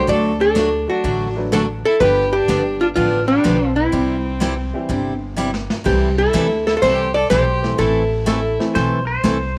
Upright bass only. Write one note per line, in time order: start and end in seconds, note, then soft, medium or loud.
0.08 0.85 D2 medium
1.04 1.81 A1 medium
2.01 2.39 G1 medium
2.48 2.89 G1 medium
2.97 3.38 A1 medium
3.45 3.86 B1 medium
3.93 4.70 C2 medium
4.89 5.67 G1 medium
5.86 6.25 C2 loud
6.34 6.75 D2 medium
6.82 7.23 C2 medium
7.31 7.72 B1 medium
7.79 8.56 A1 medium
8.75 9.17 B1 medium
9.24 9.58 C2 medium